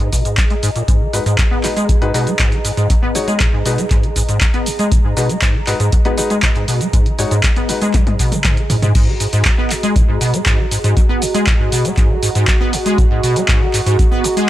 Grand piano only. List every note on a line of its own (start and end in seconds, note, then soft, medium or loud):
1.13 1.21 G#3 medium
1.13 1.21 D#4 medium
1.13 1.21 F#4 medium
1.13 1.21 B4 medium
1.64 1.72 G#3 medium
1.64 1.72 D#4 medium
1.64 1.72 F#4 medium
1.64 1.72 B4 medium
2.02 2.09 G#3 medium
2.02 2.09 D#4 medium
2.02 2.09 F#4 medium
2.02 2.09 B4 medium
2.14 2.27 G#3 medium
2.14 2.27 D#4 medium
2.14 2.27 F#4 medium
2.14 2.27 B4 medium
3.15 3.28 G#3 medium
3.15 3.28 D#4 medium
3.15 3.28 F#4 medium
3.15 3.28 C#5 medium
3.66 3.78 G#3 medium
3.66 3.78 D#4 medium
3.66 3.78 F#4 medium
3.66 3.78 B4 medium
5.17 5.25 G#3 medium
5.17 5.25 D#4 medium
5.17 5.25 F#4 medium
5.17 5.25 B4 medium
5.67 5.75 G#3 medium
5.67 5.75 D#4 medium
5.67 5.75 F#4 medium
5.67 5.75 B4 medium
6.05 6.13 G#3 medium
6.05 6.13 D#4 medium
6.05 6.13 F#4 medium
6.05 6.13 B4 medium
6.18 6.30 G#3 medium
6.18 6.30 D#4 medium
6.18 6.30 F#4 medium
6.18 6.30 B4 medium
7.19 7.31 G#3 medium
7.19 7.31 D#4 medium
7.19 7.31 F#4 medium
7.19 7.31 C#5 medium
7.69 7.81 G#3 medium
7.69 7.81 D#4 medium
7.69 7.81 F#4 medium
7.69 7.81 B4 medium